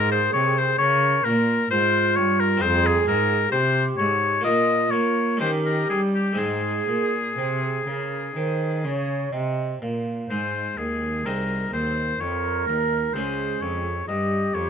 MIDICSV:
0, 0, Header, 1, 5, 480
1, 0, Start_track
1, 0, Key_signature, -4, "major"
1, 0, Tempo, 910470
1, 1381, Time_signature, 4, 2, 24, 8
1, 2344, Tempo, 977199
1, 5224, Tempo, 941915
1, 7460, End_track
2, 0, Start_track
2, 0, Title_t, "Oboe"
2, 0, Program_c, 0, 68
2, 0, Note_on_c, 0, 70, 102
2, 57, Note_off_c, 0, 70, 0
2, 60, Note_on_c, 0, 72, 90
2, 173, Note_off_c, 0, 72, 0
2, 176, Note_on_c, 0, 73, 107
2, 306, Note_on_c, 0, 72, 92
2, 314, Note_off_c, 0, 73, 0
2, 409, Note_off_c, 0, 72, 0
2, 413, Note_on_c, 0, 73, 121
2, 658, Note_on_c, 0, 70, 95
2, 666, Note_off_c, 0, 73, 0
2, 896, Note_off_c, 0, 70, 0
2, 900, Note_on_c, 0, 72, 106
2, 1137, Note_on_c, 0, 73, 100
2, 1144, Note_off_c, 0, 72, 0
2, 1266, Note_on_c, 0, 70, 87
2, 1274, Note_off_c, 0, 73, 0
2, 1382, Note_on_c, 0, 72, 107
2, 1389, Note_off_c, 0, 70, 0
2, 1511, Note_on_c, 0, 68, 92
2, 1519, Note_off_c, 0, 72, 0
2, 1618, Note_off_c, 0, 68, 0
2, 1622, Note_on_c, 0, 70, 92
2, 1853, Note_off_c, 0, 70, 0
2, 1856, Note_on_c, 0, 72, 98
2, 2027, Note_off_c, 0, 72, 0
2, 2098, Note_on_c, 0, 73, 98
2, 2339, Note_off_c, 0, 73, 0
2, 2342, Note_on_c, 0, 75, 105
2, 2572, Note_on_c, 0, 73, 92
2, 2579, Note_off_c, 0, 75, 0
2, 2809, Note_off_c, 0, 73, 0
2, 2812, Note_on_c, 0, 72, 82
2, 2866, Note_off_c, 0, 72, 0
2, 2939, Note_on_c, 0, 70, 72
2, 3053, Note_off_c, 0, 70, 0
2, 3057, Note_on_c, 0, 68, 80
2, 3110, Note_off_c, 0, 68, 0
2, 3179, Note_on_c, 0, 67, 65
2, 3295, Note_on_c, 0, 68, 80
2, 3302, Note_off_c, 0, 67, 0
2, 4743, Note_off_c, 0, 68, 0
2, 5217, Note_on_c, 0, 72, 66
2, 5462, Note_on_c, 0, 68, 65
2, 5470, Note_off_c, 0, 72, 0
2, 5707, Note_on_c, 0, 70, 70
2, 5715, Note_off_c, 0, 68, 0
2, 5946, Note_off_c, 0, 70, 0
2, 5950, Note_on_c, 0, 72, 68
2, 6188, Note_on_c, 0, 73, 77
2, 6195, Note_off_c, 0, 72, 0
2, 6424, Note_off_c, 0, 73, 0
2, 6427, Note_on_c, 0, 70, 61
2, 6666, Note_on_c, 0, 72, 59
2, 6674, Note_off_c, 0, 70, 0
2, 6908, Note_on_c, 0, 73, 68
2, 6916, Note_off_c, 0, 72, 0
2, 7141, Note_off_c, 0, 73, 0
2, 7144, Note_on_c, 0, 75, 71
2, 7382, Note_on_c, 0, 73, 63
2, 7390, Note_off_c, 0, 75, 0
2, 7460, Note_off_c, 0, 73, 0
2, 7460, End_track
3, 0, Start_track
3, 0, Title_t, "Flute"
3, 0, Program_c, 1, 73
3, 0, Note_on_c, 1, 68, 78
3, 421, Note_on_c, 1, 70, 81
3, 429, Note_off_c, 1, 68, 0
3, 759, Note_off_c, 1, 70, 0
3, 897, Note_on_c, 1, 65, 76
3, 1375, Note_on_c, 1, 68, 83
3, 1382, Note_off_c, 1, 65, 0
3, 1842, Note_off_c, 1, 68, 0
3, 1845, Note_on_c, 1, 67, 69
3, 2338, Note_on_c, 1, 65, 72
3, 2346, Note_off_c, 1, 67, 0
3, 2811, Note_on_c, 1, 67, 68
3, 2818, Note_off_c, 1, 65, 0
3, 3284, Note_off_c, 1, 67, 0
3, 3287, Note_on_c, 1, 68, 57
3, 3666, Note_off_c, 1, 68, 0
3, 3776, Note_on_c, 1, 72, 67
3, 3905, Note_on_c, 1, 68, 57
3, 3912, Note_off_c, 1, 72, 0
3, 4025, Note_off_c, 1, 68, 0
3, 4027, Note_on_c, 1, 70, 61
3, 4258, Note_off_c, 1, 70, 0
3, 4261, Note_on_c, 1, 72, 61
3, 4497, Note_off_c, 1, 72, 0
3, 4501, Note_on_c, 1, 73, 70
3, 4738, Note_on_c, 1, 75, 73
3, 4746, Note_off_c, 1, 73, 0
3, 4980, Note_off_c, 1, 75, 0
3, 4983, Note_on_c, 1, 77, 61
3, 5218, Note_off_c, 1, 77, 0
3, 6179, Note_on_c, 1, 70, 64
3, 6667, Note_on_c, 1, 68, 53
3, 6675, Note_off_c, 1, 70, 0
3, 7145, Note_off_c, 1, 68, 0
3, 7148, Note_on_c, 1, 67, 51
3, 7460, Note_off_c, 1, 67, 0
3, 7460, End_track
4, 0, Start_track
4, 0, Title_t, "Harpsichord"
4, 0, Program_c, 2, 6
4, 0, Note_on_c, 2, 44, 55
4, 0, Note_on_c, 2, 58, 50
4, 0, Note_on_c, 2, 65, 56
4, 0, Note_on_c, 2, 70, 52
4, 160, Note_off_c, 2, 44, 0
4, 187, Note_on_c, 2, 48, 61
4, 403, Note_off_c, 2, 48, 0
4, 426, Note_on_c, 2, 49, 60
4, 643, Note_off_c, 2, 49, 0
4, 665, Note_on_c, 2, 46, 60
4, 883, Note_off_c, 2, 46, 0
4, 906, Note_on_c, 2, 44, 64
4, 1122, Note_off_c, 2, 44, 0
4, 1141, Note_on_c, 2, 43, 59
4, 1347, Note_off_c, 2, 58, 0
4, 1350, Note_off_c, 2, 65, 0
4, 1355, Note_off_c, 2, 70, 0
4, 1356, Note_on_c, 2, 60, 56
4, 1359, Note_off_c, 2, 43, 0
4, 1364, Note_on_c, 2, 65, 52
4, 1374, Note_on_c, 2, 68, 54
4, 1383, Note_on_c, 2, 41, 60
4, 1600, Note_off_c, 2, 41, 0
4, 1620, Note_on_c, 2, 44, 61
4, 1837, Note_off_c, 2, 44, 0
4, 1863, Note_on_c, 2, 48, 55
4, 2080, Note_off_c, 2, 48, 0
4, 2107, Note_on_c, 2, 44, 61
4, 2311, Note_off_c, 2, 60, 0
4, 2315, Note_off_c, 2, 65, 0
4, 2320, Note_off_c, 2, 68, 0
4, 2325, Note_on_c, 2, 58, 50
4, 2327, Note_off_c, 2, 44, 0
4, 2334, Note_on_c, 2, 65, 51
4, 2342, Note_on_c, 2, 70, 46
4, 2351, Note_on_c, 2, 46, 58
4, 2561, Note_off_c, 2, 46, 0
4, 2575, Note_off_c, 2, 58, 0
4, 2581, Note_on_c, 2, 58, 52
4, 2794, Note_off_c, 2, 65, 0
4, 2795, Note_off_c, 2, 58, 0
4, 2798, Note_off_c, 2, 70, 0
4, 2798, Note_on_c, 2, 61, 48
4, 2805, Note_on_c, 2, 63, 48
4, 2813, Note_on_c, 2, 67, 44
4, 2820, Note_on_c, 2, 51, 54
4, 3036, Note_off_c, 2, 51, 0
4, 3059, Note_on_c, 2, 55, 49
4, 3269, Note_on_c, 2, 56, 53
4, 3271, Note_off_c, 2, 61, 0
4, 3274, Note_off_c, 2, 63, 0
4, 3277, Note_off_c, 2, 55, 0
4, 3277, Note_on_c, 2, 60, 47
4, 3278, Note_off_c, 2, 67, 0
4, 3282, Note_on_c, 2, 63, 48
4, 3291, Note_on_c, 2, 68, 47
4, 3298, Note_on_c, 2, 44, 46
4, 3515, Note_off_c, 2, 56, 0
4, 3518, Note_off_c, 2, 44, 0
4, 3520, Note_off_c, 2, 60, 0
4, 3522, Note_off_c, 2, 63, 0
4, 3541, Note_on_c, 2, 46, 47
4, 3762, Note_off_c, 2, 46, 0
4, 3785, Note_on_c, 2, 48, 48
4, 4006, Note_off_c, 2, 48, 0
4, 4027, Note_on_c, 2, 49, 48
4, 4247, Note_off_c, 2, 49, 0
4, 4267, Note_on_c, 2, 51, 46
4, 4485, Note_off_c, 2, 51, 0
4, 4504, Note_on_c, 2, 49, 48
4, 4723, Note_off_c, 2, 49, 0
4, 4741, Note_on_c, 2, 48, 45
4, 4964, Note_off_c, 2, 48, 0
4, 4984, Note_on_c, 2, 46, 49
4, 5203, Note_off_c, 2, 68, 0
4, 5204, Note_off_c, 2, 46, 0
4, 5222, Note_on_c, 2, 44, 41
4, 5223, Note_on_c, 2, 56, 44
4, 5444, Note_off_c, 2, 44, 0
4, 5466, Note_on_c, 2, 39, 42
4, 5685, Note_off_c, 2, 39, 0
4, 5690, Note_off_c, 2, 56, 0
4, 5708, Note_on_c, 2, 36, 38
4, 5708, Note_on_c, 2, 60, 36
4, 5709, Note_on_c, 2, 63, 33
4, 5712, Note_on_c, 2, 68, 34
4, 5926, Note_off_c, 2, 36, 0
4, 5950, Note_on_c, 2, 39, 43
4, 6055, Note_off_c, 2, 60, 0
4, 6055, Note_off_c, 2, 63, 0
4, 6057, Note_off_c, 2, 68, 0
4, 6170, Note_off_c, 2, 39, 0
4, 6193, Note_on_c, 2, 41, 43
4, 6413, Note_off_c, 2, 41, 0
4, 6440, Note_on_c, 2, 39, 40
4, 6656, Note_off_c, 2, 39, 0
4, 6676, Note_on_c, 2, 37, 41
4, 6676, Note_on_c, 2, 56, 36
4, 6678, Note_on_c, 2, 61, 38
4, 6680, Note_on_c, 2, 68, 34
4, 6891, Note_off_c, 2, 37, 0
4, 6914, Note_on_c, 2, 41, 36
4, 7016, Note_off_c, 2, 56, 0
4, 7018, Note_off_c, 2, 61, 0
4, 7019, Note_off_c, 2, 68, 0
4, 7129, Note_off_c, 2, 41, 0
4, 7151, Note_on_c, 2, 43, 44
4, 7366, Note_off_c, 2, 43, 0
4, 7385, Note_on_c, 2, 41, 41
4, 7460, Note_off_c, 2, 41, 0
4, 7460, End_track
5, 0, Start_track
5, 0, Title_t, "Cello"
5, 0, Program_c, 3, 42
5, 0, Note_on_c, 3, 44, 81
5, 178, Note_off_c, 3, 44, 0
5, 184, Note_on_c, 3, 48, 72
5, 418, Note_off_c, 3, 48, 0
5, 422, Note_on_c, 3, 49, 82
5, 657, Note_off_c, 3, 49, 0
5, 662, Note_on_c, 3, 46, 79
5, 898, Note_off_c, 3, 46, 0
5, 903, Note_on_c, 3, 44, 74
5, 1144, Note_on_c, 3, 43, 72
5, 1152, Note_off_c, 3, 44, 0
5, 1378, Note_off_c, 3, 43, 0
5, 1381, Note_on_c, 3, 41, 83
5, 1615, Note_off_c, 3, 41, 0
5, 1623, Note_on_c, 3, 44, 80
5, 1855, Note_off_c, 3, 44, 0
5, 1861, Note_on_c, 3, 48, 84
5, 2096, Note_off_c, 3, 48, 0
5, 2103, Note_on_c, 3, 44, 64
5, 2341, Note_off_c, 3, 44, 0
5, 2349, Note_on_c, 3, 46, 71
5, 2575, Note_off_c, 3, 46, 0
5, 2578, Note_on_c, 3, 58, 67
5, 2813, Note_on_c, 3, 51, 62
5, 2820, Note_off_c, 3, 58, 0
5, 3052, Note_off_c, 3, 51, 0
5, 3054, Note_on_c, 3, 55, 60
5, 3289, Note_off_c, 3, 55, 0
5, 3292, Note_on_c, 3, 44, 65
5, 3530, Note_off_c, 3, 44, 0
5, 3536, Note_on_c, 3, 46, 58
5, 3774, Note_off_c, 3, 46, 0
5, 3777, Note_on_c, 3, 48, 68
5, 4016, Note_off_c, 3, 48, 0
5, 4019, Note_on_c, 3, 49, 52
5, 4258, Note_off_c, 3, 49, 0
5, 4263, Note_on_c, 3, 51, 57
5, 4504, Note_on_c, 3, 49, 63
5, 4511, Note_off_c, 3, 51, 0
5, 4742, Note_off_c, 3, 49, 0
5, 4745, Note_on_c, 3, 48, 58
5, 4981, Note_off_c, 3, 48, 0
5, 4984, Note_on_c, 3, 46, 52
5, 5217, Note_off_c, 3, 46, 0
5, 5220, Note_on_c, 3, 44, 55
5, 5446, Note_off_c, 3, 44, 0
5, 5462, Note_on_c, 3, 39, 52
5, 5698, Note_on_c, 3, 36, 57
5, 5706, Note_off_c, 3, 39, 0
5, 5936, Note_off_c, 3, 36, 0
5, 5939, Note_on_c, 3, 39, 54
5, 6180, Note_off_c, 3, 39, 0
5, 6184, Note_on_c, 3, 41, 56
5, 6427, Note_on_c, 3, 39, 52
5, 6434, Note_off_c, 3, 41, 0
5, 6660, Note_off_c, 3, 39, 0
5, 6663, Note_on_c, 3, 37, 50
5, 6900, Note_off_c, 3, 37, 0
5, 6908, Note_on_c, 3, 41, 44
5, 7141, Note_off_c, 3, 41, 0
5, 7145, Note_on_c, 3, 43, 56
5, 7379, Note_off_c, 3, 43, 0
5, 7386, Note_on_c, 3, 41, 52
5, 7460, Note_off_c, 3, 41, 0
5, 7460, End_track
0, 0, End_of_file